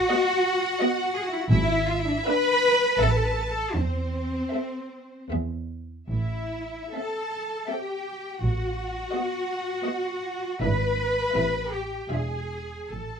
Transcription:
Already playing: F#4 F#5
0.12 B3 F#4 D#5
0.81 B3 F#4 D#5
1.16 G#4
1.24 F#4
1.33 E4
1.42 F#4
1.49 G#1 E4 E5
1.88 F4
1.99 E4
2.08 D4
2.18 E4
2.27 D4 B4 E5 B5
3.01 A1 C4 A4 E5 A5
3.09 B4
3.16 A4
3.25 B4
3.33 A4
3.41 B4
3.50 A4
3.77 E2 C4 C5
4.55 C4 A4 E5
5.31 E2 B3 G#4 E5
6.10 A1 E4 E5
6.95 C4 A4 E5 A5
7.69 C4 G4 A4 E5 G5
8.41 A1 F#4 F#5
9.13 B3 F#4 D#5
9.85 B3 F#4 D#5
10.62 G#1 D4 E4 B4 E5 B5
11.35 A1 C4 E4 E5
11.73 G4 G5
12.11 E1 D4 F4 G#4 E5 G#5
12.92 A1 A4 A5

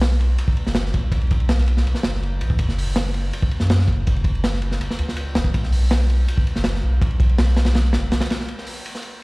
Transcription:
Already playing: B1
0.01 snare, ride
0.12 snare
0.21 ride
0.38 ride
0.48 kick
0.57 ride
0.66 F#1, snare
0.75 snare, ride
0.86 snare
0.94 B1, kick, ride
1.12 B1, kick, ride
1.21 ride
1.30 kick, ride
1.40 ride
1.49 snare, ride
1.58 snare
1.68 ride
1.77 snare
1.86 B1, ride
1.95 snare
2.03 F#1, snare, ride
2.14 snare
2.23 ride
2.41 A1, ride
2.50 kick
2.59 F#1, kick, ride
2.69 snare
2.78 open hi-hat
2.87 ride
2.96 snare, ride
3.06 snare
3.14 ride
3.33 ride
3.42 kick
3.51 ride
3.60 F#2, snare
3.70 snare, ride
3.79 snare
3.87 F#1, kick, ride
4.07 F#1, kick, ride
4.16 ride
4.24 kick, ride
4.35 ride
4.44 snare, ride
4.53 snare
4.62 ride
4.71 snare
4.80 F#1, ride
4.90 snare
4.98 C#2, ride
5.08 snare
5.16 ride
5.35 E1, snare, ride
5.44 kick
5.54 B1, kick, ride
5.63 snare
5.72 open hi-hat
5.82 ride
5.91 snare, ride
6.00 snare
6.10 ride
6.28 ride
6.38 kick
6.47 ride
6.55 F#1, snare
6.64 snare, ride
6.74 snare
6.83 B1
7.01 B1, kick, ride
7.11 ride
7.20 kick, ride
7.29 ride
7.38 snare, ride
7.47 snare
7.57 snare, ride
7.65 snare, ride
7.75 snare, ride
7.85 snare
7.93 F#1, snare, ride
8.11 B1, snare, ride
8.21 snare, ride
8.30 snare, ride
8.40 snare
8.48 ride
8.58 snare
8.67 open hi-hat
8.76 ride
8.86 ride
8.95 snare
9.03 ride

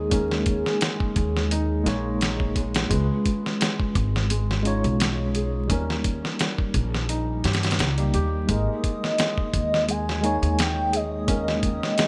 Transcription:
Already playing: D#2 G#3 A#3 D#4 G#4 C#5
0.10 G#3 A#3 C#4 D#4, kick, closed hi-hat
0.14 A#4
0.32 snare
0.46 kick, closed hi-hat
0.66 snare
0.81 G#3, snare, closed hi-hat
1.00 kick
1.16 D#2, kick, closed hi-hat
1.36 snare
1.51 D#4, closed hi-hat
1.84 A#1 G#3 A#3 D#4, snare, closed hi-hat
1.88 C#5
2.21 snare, closed hi-hat
2.40 kick
2.56 G#3, kick, closed hi-hat
2.74 snare, closed hi-hat
2.89 C#2 G#3 C#4 F4, kick, closed hi-hat
2.93 B4
3.25 kick, closed hi-hat
3.46 snare
3.60 G#3, snare, closed hi-hat
3.80 kick
3.95 G#1, kick, closed hi-hat
4.16 snare
4.30 G#3, closed hi-hat
4.51 snare
4.63 G#3 C#4 D#4 F4, closed hi-hat
4.67 C#5
4.84 B1, closed hi-hat
5.00 snare, closed hi-hat
5.35 G#4, closed hi-hat
5.67 D#2 G3 A#3 C#4 D#4, kick, closed hi-hat
5.72 A#4
5.90 snare
6.04 kick, closed hi-hat
6.25 snare
6.39 G3, snare, closed hi-hat
6.58 kick
6.74 A#1, kick, closed hi-hat
6.94 snare
7.09 D#4, closed hi-hat
7.44 G2 G4, snare, closed hi-hat
7.53 snare, closed hi-hat
7.63 snare, closed hi-hat
7.71 snare, closed hi-hat
7.79 C#2, snare, closed hi-hat
7.98 G3 A#3 D#4 G4, closed hi-hat
8.14 D#2 G4, closed hi-hat
8.47 G#1 G#3 A#3 D#4 D#5, kick, closed hi-hat
8.52 A#4
8.84 kick, closed hi-hat
9.04 snare
9.19 G#3, snare, closed hi-hat
9.38 kick
9.54 D#2, kick, closed hi-hat
9.74 snare
9.88 G#3 G#5, closed hi-hat
10.09 snare
10.21 G#3 A#3 D#4, closed hi-hat
10.26 C#5
10.42 D#2, closed hi-hat
10.59 G5, snare, closed hi-hat
10.93 G#4 D#5, closed hi-hat
11.26 G#3 A#3 C#4 D#4, kick, closed hi-hat
11.31 A#4
11.48 snare
11.63 kick, closed hi-hat
11.83 snare
11.98 G#3, snare, closed hi-hat

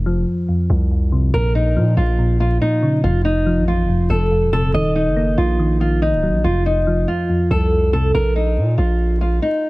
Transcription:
Already playing: F1 F2
0.06 F3
0.49 F2
0.70 C2 F2
0.91 F2
1.12 C3
1.34 A#1 A#2 A#4
1.55 A#2 D#4
1.76 A#2 F3
1.97 A#1 F4
2.19 A#2
2.40 A#2 F4
2.61 A#2 D#4
2.83 C#3
3.04 F1 F2 F4
3.25 D#4
3.46 F3
3.58 A1
3.68 F4
3.84 F1
3.89 F2
4.10 F1 F2 A4
4.32 F2
4.43 D#1
4.53 C3 A4
4.74 D#1 D#3 D#5
4.95 D#3 D#4
5.07 F#1
5.16 A#3
5.38 A#1 F4
5.59 D#3
5.80 D#3 F4
6.02 D#3 D#4
6.13 C#1
6.23 F#3
6.29 A#1
6.44 F1 F2 F4
6.66 F2 D#4
6.87 F3
7.08 F4
7.29 F2
7.51 C2 F2 A4
7.72 F2
7.93 C3 A4
8.15 A#1 A#4
8.36 D#4
8.57 A#2
8.78 A#1 F4
9.21 F4
9.42 D#4

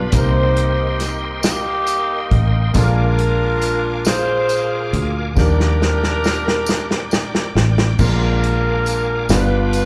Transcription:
Already playing: B1 G2 G3 B3 D4 F4 G4 B4 D5 F5 B5
0.12 C2 C3 G3 A#3 C4 D#4 G4 A#4 D#5 G5 C6, kick, closed hi-hat, tambourine
0.17 C5
0.56 closed hi-hat
1.00 snare, closed hi-hat, tambourine
1.43 A#3 D#4, snare, closed hi-hat, tambourine
1.48 G4
1.87 closed hi-hat, tambourine
2.31 A1, kick, closed hi-hat
2.73 A#1 A#2 G#3 A#3 D4 F4 A4 A#4 F5 G#5 D6, kick, closed hi-hat, tambourine
2.84 A#4
3.18 closed hi-hat
3.61 closed hi-hat, tambourine
4.05 F4 G#4 C5, snare, closed hi-hat, tambourine
4.49 closed hi-hat, tambourine
4.93 D2, closed hi-hat
5.35 D#2 D#3 F3 A#3 D4 G4 A#4 D5 G5, kick, snare, tambourine
5.40 G3 D4
5.60 snare
5.82 snare
6.04 snare
6.24 snare, tambourine
6.48 snare
6.66 snare, tambourine
6.91 snare
7.11 snare, tambourine
7.35 snare
7.55 A1, snare
7.78 snare
7.99 A#1 A#2 G#3 A#3 D4 F4 A#4 F5 G#5 D6, kick, crash, tambourine
8.43 closed hi-hat
8.86 closed hi-hat, tambourine
9.29 G1 G2 G3 B3 D4 F4 A#4 B4 G5, snare, closed hi-hat, tambourine
9.33 B4
9.73 closed hi-hat, tambourine

